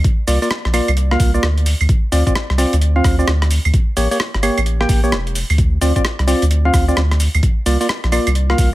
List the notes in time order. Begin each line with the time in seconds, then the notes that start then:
0.04 kick, closed hi-hat, cabasa
0.27 C2 A#3 F4 D5, open hi-hat, cabasa
0.42 A#3 F4 D5, open hi-hat, cabasa
0.51 cross-stick, cabasa
0.65 A#1, cross-stick, closed hi-hat
0.74 A#3 F4 D5, open hi-hat, cabasa, claves
0.88 C2, closed hi-hat, cabasa, claves
0.97 closed hi-hat, cabasa
1.11 A#3 F4 F5, cross-stick
1.20 C2, kick, open hi-hat, cabasa
1.34 A#3 F4 D5, cabasa
1.43 D2, cross-stick, cabasa
1.58 closed hi-hat
1.66 open hi-hat, cabasa
1.81 D2, cabasa, claves
1.89 kick, closed hi-hat, cabasa
2.12 D2 C4 F4 D5, open hi-hat, cabasa
2.27 C4 F4 D5, kick, closed hi-hat, cabasa
2.35 cross-stick, cabasa
2.50 C2, cross-stick, closed hi-hat
2.58 C4 F4 D5, open hi-hat, cabasa
2.73 D2, closed hi-hat, cabasa
2.82 closed hi-hat, cabasa
2.96 C4 F4 F5
3.04 D2, kick, cross-stick, open hi-hat, cabasa
3.19 C4 F4 D5, cabasa
3.28 D2, cross-stick, cabasa
3.42 cross-stick, closed hi-hat
3.51 open hi-hat, cabasa
3.65 D2, cabasa, claves
3.74 kick, closed hi-hat, cabasa
3.97 A1 A#3 G4 C#5, open hi-hat, cabasa
4.11 A#3 G4 C#5, open hi-hat, cabasa
4.20 cross-stick, cabasa
4.34 G1, cross-stick, closed hi-hat
4.43 A#3 G4 C#5, open hi-hat, cabasa, claves
4.58 A1, closed hi-hat, cabasa, claves
4.66 closed hi-hat, cabasa
4.81 A#3 G4 G5, cross-stick
4.89 A1, kick, open hi-hat, cabasa
5.04 A#3 G4 C#5, cabasa
5.12 E1, cross-stick, cabasa
5.27 closed hi-hat
5.35 open hi-hat, cabasa
5.50 D2, open hi-hat, cabasa, claves
5.58 kick, closed hi-hat, cabasa
5.81 D2 C4 F4 D5, open hi-hat, cabasa
5.96 C4 F4 D5, kick, closed hi-hat, cabasa
6.05 cross-stick, cabasa
6.19 C2, cross-stick, closed hi-hat
6.27 C4 F4 D5, open hi-hat, cabasa
6.42 D2, closed hi-hat, cabasa
6.51 closed hi-hat, cabasa
6.65 C4 F4 F5
6.74 D2, kick, cross-stick, open hi-hat, cabasa
6.88 C4 F4 D5, cabasa
6.97 D2, cross-stick, cabasa
7.11 cross-stick, closed hi-hat
7.20 open hi-hat, cabasa
7.34 D2, cabasa, claves
7.43 kick, closed hi-hat, cabasa
7.66 C2 A#3 F4 D5, open hi-hat, cabasa
7.81 A#3 F4 D5, open hi-hat, cabasa
7.89 cross-stick, cabasa
8.04 A#1, cross-stick, closed hi-hat
8.12 A#3 F4 D5, open hi-hat, cabasa, claves
8.27 C2, closed hi-hat, cabasa, claves
8.35 closed hi-hat, cabasa
8.50 A#3 F4 F5, cross-stick
8.58 C2, kick, open hi-hat, cabasa